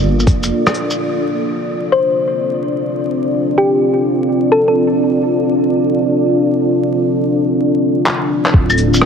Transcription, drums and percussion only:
0.19 shaker soft
0.27 kick loud
0.27 cabasa medium
0.43 cabasa soft
0.43 shaker medium
0.67 cross-stick loud
0.67 claves soft
0.67 shaker soft
0.75 cabasa medium
0.90 shaker medium
8.06 clap medium
8.46 clap medium
8.54 kick loud
8.70 claves medium
8.70 shaker soft
8.78 cabasa medium
8.94 shaker medium
9.01 cross-stick loud

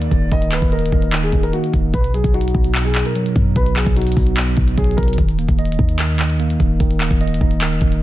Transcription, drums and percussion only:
0.02 closed hi-hat medium
0.11 kick loud
0.11 closed hi-hat medium
0.32 kick loud
0.32 closed hi-hat medium
0.42 closed hi-hat medium
0.52 clap medium
0.52 closed hi-hat medium
0.62 kick loud
0.62 closed hi-hat medium
0.72 closed hi-hat soft
0.79 closed hi-hat medium
0.86 closed hi-hat medium
0.92 kick loud
1.02 closed hi-hat medium
1.12 clap loud
1.12 closed hi-hat medium
1.32 kick medium
1.32 closed hi-hat medium
1.43 closed hi-hat medium
1.53 closed hi-hat medium
1.64 closed hi-hat medium
1.74 kick loud
1.74 closed hi-hat medium
1.94 kick loud
1.94 closed hi-hat medium
2.04 closed hi-hat medium
2.14 closed hi-hat medium
2.24 kick loud
2.24 closed hi-hat medium
2.34 closed hi-hat soft
2.41 closed hi-hat medium
2.48 closed hi-hat medium
2.55 kick medium
2.64 closed hi-hat medium
2.75 clap loud
2.75 closed hi-hat medium
2.94 clap loud
2.94 closed hi-hat medium
3.06 closed hi-hat medium
3.16 closed hi-hat medium
3.26 closed hi-hat medium
3.36 kick loud
3.36 closed hi-hat medium
3.56 kick loud
3.56 closed hi-hat medium
3.66 closed hi-hat medium
3.76 clap loud
3.76 closed hi-hat medium
3.86 kick loud
3.86 closed hi-hat medium
3.97 closed hi-hat medium
4.02 closed hi-hat medium
4.07 closed hi-hat medium
4.12 closed hi-hat medium
4.17 kick loud
4.17 open hi-hat medium
4.27 closed hi-hat medium
4.37 clap loud
4.37 closed hi-hat medium
4.57 kick medium
4.57 closed hi-hat medium
4.68 closed hi-hat medium
4.78 kick medium
4.78 closed hi-hat medium
4.84 closed hi-hat medium
4.91 closed hi-hat soft
4.98 kick loud
4.98 closed hi-hat medium
5.03 closed hi-hat medium
5.08 closed hi-hat medium
5.13 closed hi-hat medium
5.18 kick loud
5.18 closed hi-hat medium
5.29 closed hi-hat medium
5.39 closed hi-hat medium
5.49 kick loud
5.49 closed hi-hat medium
5.59 closed hi-hat soft
5.65 closed hi-hat medium
5.72 closed hi-hat medium
5.79 kick loud
5.89 closed hi-hat medium
5.99 clap loud
5.99 closed hi-hat medium
6.19 clap loud
6.19 closed hi-hat medium
6.30 closed hi-hat medium
6.40 closed hi-hat medium
6.50 closed hi-hat medium
6.60 kick loud
6.60 closed hi-hat medium
6.80 kick loud
6.80 closed hi-hat medium
6.91 closed hi-hat medium
7.00 clap loud
7.00 closed hi-hat medium
7.11 kick medium
7.11 closed hi-hat medium
7.21 closed hi-hat soft
7.28 closed hi-hat medium
7.34 closed hi-hat medium
7.41 kick loud
7.51 closed hi-hat medium
7.61 clap loud
7.61 closed hi-hat medium
7.81 kick medium
7.81 closed hi-hat medium
7.92 closed hi-hat medium

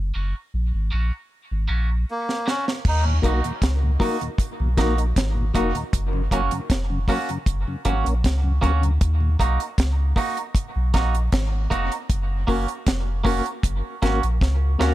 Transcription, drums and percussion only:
2.29 snare medium
2.48 snare medium
2.68 snare medium
2.85 kick loud
2.85 crash loud
3.23 kick medium
3.23 closed hi-hat medium
3.44 closed hi-hat medium
3.62 kick loud
3.62 snare loud
3.62 closed hi-hat medium
4.00 kick loud
4.00 open hi-hat medium
4.21 closed hi-hat soft
4.38 kick loud
4.38 closed hi-hat medium
4.78 kick medium
4.78 snare medium
4.78 closed hi-hat medium
4.98 closed hi-hat medium
5.16 kick loud
5.16 snare loud
5.16 closed hi-hat loud
5.55 kick medium
5.55 closed hi-hat medium
5.75 closed hi-hat medium
5.93 kick loud
5.93 closed hi-hat medium
6.31 kick medium
6.31 closed hi-hat medium
6.51 closed hi-hat medium
6.70 kick loud
6.70 snare loud
6.70 closed hi-hat medium
7.08 kick medium
7.08 open hi-hat medium
7.29 closed hi-hat soft
7.46 kick loud
7.46 closed hi-hat medium
7.85 kick medium
7.85 closed hi-hat medium
8.06 closed hi-hat medium
8.24 kick loud
8.24 snare loud
8.24 closed hi-hat loud
8.63 kick medium
8.63 closed hi-hat medium
8.83 closed hi-hat medium
9.01 kick loud
9.01 closed hi-hat medium
9.39 kick medium
9.39 closed hi-hat medium
9.60 closed hi-hat medium
9.78 kick loud
9.78 snare loud
9.78 closed hi-hat medium
10.16 kick medium
10.16 open hi-hat medium
10.37 closed hi-hat soft
10.55 kick loud
10.55 closed hi-hat medium
10.94 kick medium
10.94 snare medium
10.94 closed hi-hat medium
11.15 closed hi-hat medium
11.32 kick loud
11.32 snare loud
11.32 closed hi-hat medium
11.71 kick medium
11.71 closed hi-hat medium
11.92 closed hi-hat medium
12.10 kick loud
12.10 closed hi-hat medium
12.48 kick medium
12.48 open hi-hat medium
12.68 closed hi-hat medium
12.86 kick loud
12.86 snare loud
12.86 closed hi-hat medium
13.25 kick loud
13.25 open hi-hat medium
13.46 closed hi-hat soft
13.63 kick loud
13.63 closed hi-hat medium
14.03 kick loud
14.03 snare medium
14.03 closed hi-hat medium
14.23 closed hi-hat medium
14.41 kick loud
14.41 snare medium
14.81 snare medium

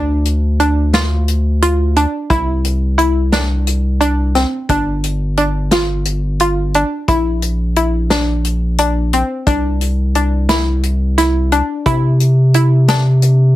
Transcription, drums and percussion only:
0.25 closed hi-hat soft
0.60 closed hi-hat soft
0.93 snare medium
0.93 closed hi-hat medium
1.28 closed hi-hat medium
1.62 closed hi-hat medium
1.96 closed hi-hat soft
2.30 kick medium
2.30 closed hi-hat medium
2.65 closed hi-hat medium
2.99 closed hi-hat medium
3.32 snare medium
3.32 closed hi-hat medium
3.67 closed hi-hat medium
4.01 closed hi-hat medium
4.35 snare soft
4.35 closed hi-hat soft
4.69 kick medium
4.69 closed hi-hat medium
5.04 closed hi-hat medium
5.37 closed hi-hat soft
5.71 snare medium
5.71 closed hi-hat medium
6.05 closed hi-hat soft
6.40 closed hi-hat medium
6.74 closed hi-hat soft
7.08 kick medium
7.08 closed hi-hat medium
7.42 closed hi-hat medium
7.76 closed hi-hat medium
8.10 snare loud
8.10 closed hi-hat medium
8.44 closed hi-hat soft
8.78 closed hi-hat medium
9.13 closed hi-hat medium
9.46 kick medium
9.46 closed hi-hat medium
9.81 closed hi-hat soft
10.15 closed hi-hat medium
10.49 snare loud
10.49 closed hi-hat medium
10.83 closed hi-hat soft
11.18 snare soft
11.18 closed hi-hat medium
11.52 closed hi-hat soft
11.86 kick medium
11.86 closed hi-hat medium
12.20 closed hi-hat medium
12.54 closed hi-hat soft
12.88 snare medium
12.88 closed hi-hat medium
13.22 closed hi-hat soft

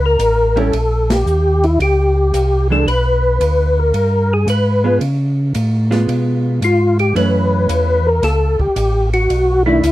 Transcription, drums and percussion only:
0.19 hi-hat pedal soft
0.19 ride medium
0.57 ride soft
0.73 ride medium
1.10 snare medium
1.10 ride medium
1.27 hi-hat pedal soft
1.63 ride soft
1.80 ride medium
2.34 hi-hat pedal medium
2.34 ride medium
2.88 ride medium
3.41 hi-hat pedal medium
3.41 ride medium
3.94 ride medium
4.48 hi-hat pedal medium
4.48 ride medium
5.01 ride medium
5.54 hi-hat pedal soft
5.54 ride medium
5.92 snare soft
5.92 ride soft
6.09 ride medium
6.62 hi-hat pedal medium
6.62 ride medium
6.99 ride soft
7.16 ride medium
7.69 hi-hat pedal medium
7.69 ride medium
8.23 snare soft
8.23 ride medium
8.59 kick medium
8.76 hi-hat pedal medium
8.76 ride medium
9.13 ride soft
9.30 ride medium
9.84 hi-hat pedal medium
9.84 ride medium

